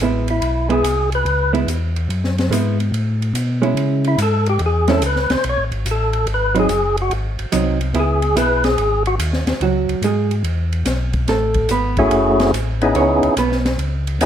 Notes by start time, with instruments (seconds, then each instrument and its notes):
0.00 tonewheel organ A1, hollow-body jazz guitar G#3 B3 E4, hi-hat pedal, ride
0.28 tonewheel organ E4, ride
0.41 tonewheel organ B1, ride
0.69 hollow-body jazz guitar G#3 B3 E4, tonewheel organ G#4, ride
0.83 tonewheel organ C2, hi-hat pedal, ride
1.12 tonewheel organ B4, ride
1.25 tonewheel organ C#2, ride
1.53 hollow-body jazz guitar G#3 B3 E4, ride
1.67 tonewheel organ E2, hi-hat pedal, ride
1.96 ride
2.09 tonewheel organ F#2, ride
2.24 snare
2.38 snare, ride
2.50 tonewheel organ G#2, hollow-body jazz guitar G#3 B3 E4, hi-hat pedal, ride
2.80 ride
2.92 tonewheel organ A2, ride
3.22 ride
3.34 tonewheel organ B2, hi-hat pedal, ride
3.62 hollow-body jazz guitar G#3 C#4 E4, ride
3.75 tonewheel organ C#3, ride
4.04 tonewheel organ E4, ride
4.18 tonewheel organ G#2, hi-hat pedal, ride
4.22 tonewheel organ A4
4.46 tonewheel organ G4, ride
4.59 tonewheel organ E2, ride
4.66 tonewheel organ G#4
4.88 hollow-body jazz guitar G#3 C#4 E4, tonewheel organ A4, snare, ride
5.01 tonewheel organ C#2, hi-hat pedal, ride
5.06 tonewheel organ B4
5.16 snare
5.29 tonewheel organ C#2 C5, snare, ride
5.44 tonewheel organ B1, ride
5.49 tonewheel organ C#5
5.57 tonewheel organ A1
5.72 tonewheel organ G#1, ride
5.86 tonewheel organ A1, hi-hat pedal, ride
5.91 tonewheel organ A4
6.13 ride
6.27 tonewheel organ G#1, ride
6.34 tonewheel organ B4
6.55 hollow-body jazz guitar F#3 C4 D#4, ride
6.59 tonewheel organ G#4
6.69 tonewheel organ F#1, hi-hat pedal, ride
6.97 ride
7.02 tonewheel organ F#4
7.11 tonewheel organ G#1, ride
7.39 tonewheel organ G#1, ride
7.52 tonewheel organ C2, hollow-body jazz guitar F#3 C4 D#4, hi-hat pedal, ride
7.81 ride
7.94 tonewheel organ C#2, hollow-body jazz guitar B3 E4 G#4, ride
7.99 tonewheel organ G#4
8.22 ride
8.35 tonewheel organ B1 B4, hollow-body jazz guitar B3 E4 G#4, hi-hat pedal, ride
8.64 tonewheel organ G#4, snare, ride
8.78 tonewheel organ G#1, ride
9.06 tonewheel organ F#4, ride
9.19 tonewheel organ D#2, hi-hat pedal, ride
9.33 snare
9.46 tonewheel organ D#2, snare, ride
9.60 tonewheel organ C#2, hollow-body jazz guitar F#3 F#4, ride
9.88 tonewheel organ C#2, ride
10.01 tonewheel organ G#2, hollow-body jazz guitar G#3 G#4, hi-hat pedal, ride
10.31 ride
10.43 tonewheel organ E2, ride
10.73 ride
10.85 tonewheel organ B1, snare, hi-hat pedal, ride
11.13 kick, ride
11.27 tonewheel organ A1, hollow-body jazz guitar A3 A4, snare, ride
11.54 kick, ride
11.69 tonewheel organ G#1, hollow-body jazz guitar B3 B4, hi-hat pedal, ride
11.97 tonewheel organ A3 C#4 E4 F#4 G#4, kick, ride
12.11 tonewheel organ F#1, ride
12.40 snare, ride
12.53 tonewheel organ A1, hi-hat pedal, ride
12.81 tonewheel organ B3 C#4 D#4 E4 G#4, ride
12.95 tonewheel organ C#2, hollow-body jazz guitar C#4 C#5, ride
13.23 tonewheel organ C#2, ride
13.37 tonewheel organ B1, hollow-body jazz guitar B3 B4, hi-hat pedal, ride
13.52 snare
13.65 snare, ride
13.78 tonewheel organ C#2, ride
14.07 ride
14.19 tonewheel organ D#2 B3 C#4 D#4 E4 G#4, hi-hat pedal, ride